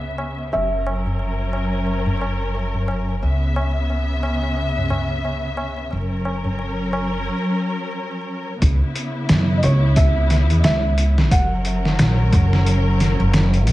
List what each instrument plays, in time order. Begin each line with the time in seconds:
Already playing: upright bass C#2, string section C#3 B3 E5, felt piano E5
0.18 tabla na
0.39 tabla na
0.52 upright bass F#1, string section F#3 C#4 A#4, felt piano E5, tabla na
0.87 tabla na
1.06 tabla na, tabla ge
1.19 tabla na
1.53 tabla na
1.73 tabla na
1.87 tabla na
2.06 tabla na, tabla ge
2.21 tabla na
2.42 tabla na
2.55 tabla na
2.74 tabla ge
2.88 tabla na
3.09 tabla na
3.22 upright bass C#2, string section C#3 B3 E5, tabla na
3.56 tabla na
3.76 tabla na
3.90 tabla na
4.23 tabla na
4.43 tabla na
4.57 tabla na
4.78 tabla na, tabla ge
4.90 tabla na, tabla ge
5.10 tabla na
5.25 tabla na
5.57 tabla na
5.77 tabla na
5.91 upright bass F#1, string section F#3 C#4 A#4, tabla na
6.25 tabla na
6.44 tabla na, tabla ge
6.59 tabla na
6.93 tabla na
7.13 tabla na
8.61 upright bass C#2, string section C#3 B3 E4, kick, closed hi-hat
8.95 closed hi-hat
9.29 upright bass F#2, snare, closed hi-hat
9.57 felt piano D#5
9.63 upright bass C#2, felt piano C#5, closed hi-hat
9.96 felt piano E5, kick, closed hi-hat
10.30 snare, closed hi-hat
10.50 upright bass E2, closed hi-hat
10.64 upright bass C#2, felt piano E5, snare, closed hi-hat
10.98 closed hi-hat
11.18 snare
11.31 upright bass F#1, string section F#3 C#4 A#4, felt piano F#5, kick, closed hi-hat
11.65 closed hi-hat
11.85 snare
11.99 upright bass A#1, snare, closed hi-hat
12.32 upright bass F#1, kick, closed hi-hat
12.53 snare
12.66 closed hi-hat
13.00 snare, closed hi-hat
13.20 upright bass F#1
13.34 snare, closed hi-hat
13.54 closed hi-hat
13.67 upright bass A#1, closed hi-hat